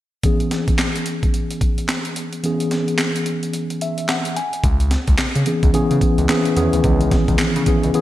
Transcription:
0.23 E3 B3 C#4 G#4, kick, closed hi-hat
0.40 closed hi-hat
0.51 snare, closed hi-hat
0.68 kick, closed hi-hat
0.79 snare, clap, closed hi-hat
0.96 closed hi-hat
1.06 closed hi-hat
1.23 kick, closed hi-hat
1.34 closed hi-hat
1.50 closed hi-hat
1.61 kick, closed hi-hat
1.78 closed hi-hat
1.89 snare, clap, closed hi-hat
2.05 closed hi-hat
2.16 closed hi-hat
2.33 closed hi-hat
2.43 E3 B3 C#4 G#4, closed hi-hat
2.60 closed hi-hat
2.71 snare, closed hi-hat
2.88 closed hi-hat
2.99 snare, clap, closed hi-hat
3.16 closed hi-hat
3.26 closed hi-hat
3.43 closed hi-hat
3.53 closed hi-hat
3.70 closed hi-hat
3.81 E5, closed hi-hat
3.98 closed hi-hat
4.09 F#5, snare, clap, closed hi-hat
4.25 closed hi-hat
4.36 G#5, closed hi-hat
4.53 closed hi-hat
4.63 C#2, kick, closed hi-hat
4.80 closed hi-hat
4.91 snare, closed hi-hat
5.08 C#2, kick, closed hi-hat
5.18 C#3, snare, clap, closed hi-hat
5.35 C#3, closed hi-hat
5.46 E3 B3 C#4 G#4, closed hi-hat
5.63 C#2, kick, closed hi-hat
5.74 C#3 E3 B3 C#4 G#4, closed hi-hat
5.91 C#3, closed hi-hat
6.01 kick, closed hi-hat
6.18 C#2, closed hi-hat
6.29 E3 B3 C#4 G#4, snare, clap, closed hi-hat
6.45 closed hi-hat
6.56 E2 D#3 B3 C#4 G#4, closed hi-hat
6.63 E3
6.73 D2, closed hi-hat
6.84 C#2, kick, closed hi-hat
7.01 closed hi-hat
7.11 kick, snare, closed hi-hat
7.28 C#2, kick, closed hi-hat
7.39 C#3, snare, clap, closed hi-hat
7.56 C#3, closed hi-hat
7.66 E3 B3 C#4 G#4, kick, closed hi-hat
7.83 C#2, closed hi-hat
7.94 C#3 E3 B3 C#4 G#4, closed hi-hat

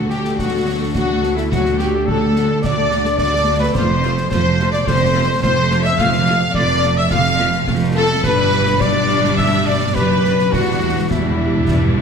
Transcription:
Already playing: D2 D3 A3 D4 A4 D5 F#5 A5
0.09 F#3 F#4 G4 F#5 G5, snare
0.24 A3 A4 D5, snare
0.37 F#3 A3 F#4 F#5, concert bass drum, snare
0.51 A3 D4 A4
0.66 F#3 F#4 A4
0.80 A3 A4 D5
0.94 F#3 F#4 F#5, concert bass drum, snare
1.08 A3 A4 A5
1.22 F#3 F#4 F#5, snare
1.35 A3 E4 A4 D5 E5, snare
1.50 D3 F#3 F#4 F#5, concert bass drum, snare
1.65 A3 D4 A4, snare
1.78 F#3 F#4 G4 A4 G5, snare
1.94 A3 A4 D5
2.06 F#3 F#4 A4 F#5 A5, concert bass drum
2.22 A3 A4 A5
2.36 F#3 F#4 F#5, snare
2.50 A3 A4 D5
2.63 F#3 A3 F#4 D5 D6, concert bass drum, snare
2.77 A3 D4 A4
2.91 F#3 F#4 A4, snare
3.05 A3 A4 D5, snare
3.18 F#3 F#4 D5 F#5 D6, concert bass drum, snare
3.33 A3 A4 A5
3.48 F#3 F#4 F#5
3.60 A3 A4 B4 D5 B5
3.74 F1 F2 A3 F4 C5 C6, concert bass drum, snare, crash
3.89 C4
4.03 A3 F4 A4, snare
4.17 C5, snare
4.30 F1 F2 A3 F4 C5 F5 C6, concert bass drum, snare
4.45 A5
4.59 A3 F4 F5, snare
4.72 C5 D5 D6, snare
4.85 F1 F2 C3 A3 F4 C5 C6, concert bass drum, snare
5.01 C4
5.15 A3 F4 A4
5.41 F1 F2 A3 F4 C5 F5 C6, concert bass drum, snare
5.56 A5
5.71 A3 F4 F5, snare
5.83 C5 E5 E6, snare
5.98 F1 F2 A3 F4 F5 F6, concert bass drum, snare
6.12 C4, snare
6.26 A3 F4 A4, snare
6.42 C5
6.54 F1 F2 A3 F4 D5 F5 D6, concert bass drum
6.70 A5
6.83 A3 F4 F5, snare
6.97 C5 E5 E6
7.11 F1 F2 C3 A3 F4 F5 F6, concert bass drum, snare
7.27 C4
7.39 A3 F4 A4, snare
7.53 C5, snare
7.66 F1 F2 A3 F4 F5, concert bass drum, snare
7.84 A5
7.94 A3 F4 A4 F5 A5
8.23 G1 G2 B2 G3 D4 B4 B5, concert bass drum, snare
8.39 B3
8.52 snare
8.67 D4, snare
8.80 G3 D4 D5 D6, concert bass drum, snare
8.97 B5
9.09 snare
9.24 snare
9.37 D3 E5 E6, concert bass drum, snare
9.66 B4 D5 D6
9.94 F#1 F#2 D4 G4 B4 D5 B5, concert bass drum, snare
10.10 B5
10.25 snare
10.39 snare
10.51 E1 E2 G3 D4 F#4 F#5, concert bass drum, snare
10.60 E2
10.67 E2 G3
10.76 E2
10.81 E2 B4
10.93 E2 G4
10.99 E2
11.06 E2 G3 E4 D5
11.10 E2 D4 E4 E5, concert bass drum, snare
11.22 E2 B5
11.30 E2
11.37 E2 D5
11.46 E2
11.53 E2 G4
11.60 E2
11.66 E2 G2 B2, concert bass drum, snare
11.76 E2
11.81 E2 G3
11.88 E2
11.95 E2 B4

